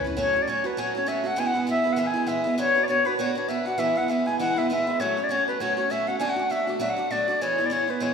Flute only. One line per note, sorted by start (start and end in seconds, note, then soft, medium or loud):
0.19 0.43 C#5 loud
0.42 0.50 D5 medium
0.49 0.68 C#5 medium
0.66 0.81 B4 medium
0.80 0.95 C#5 medium
0.96 1.10 C#5 medium
1.08 1.28 E5 medium
1.27 1.41 F#5 medium
1.39 1.48 G#5 loud
1.47 1.68 F#5 loud
1.70 1.94 E5 loud
1.93 2.00 F#5 medium
1.99 2.08 E5 medium
2.06 2.29 G#5 medium
2.28 2.58 E5 medium
2.59 2.85 C#5 loud
2.83 2.88 D5 medium
2.88 3.08 C#5 loud
3.06 3.18 B4 medium
3.19 3.35 C#5 medium
3.36 3.50 C#5 medium
3.48 3.67 E5 medium
3.66 3.80 F#5 medium
3.79 3.99 E5 loud
3.97 4.07 F#5 medium
4.07 4.28 E5 medium
4.07 4.12 F#5 medium
4.26 4.39 G#5 medium
4.40 4.60 F#5 loud
4.58 4.70 E5 medium
4.71 5.02 E5 medium
5.00 5.25 C#5 medium
5.24 5.32 D5 medium
5.31 5.47 C#5 medium
5.47 5.63 B4 medium
5.61 5.77 C#5 medium
5.77 5.92 C#5 medium
5.91 6.09 E5 medium
6.08 6.19 F#5 medium
6.19 6.31 G#5 loud
6.29 6.53 F#5 medium
6.51 6.74 E5 medium
6.81 6.91 E5 medium
6.90 7.13 F#5 medium
7.11 7.43 D5 medium
7.42 7.67 C#5 loud
7.66 7.74 D5 medium
7.72 7.92 C#5 medium
7.90 8.04 B4 medium
8.02 8.14 C#5 medium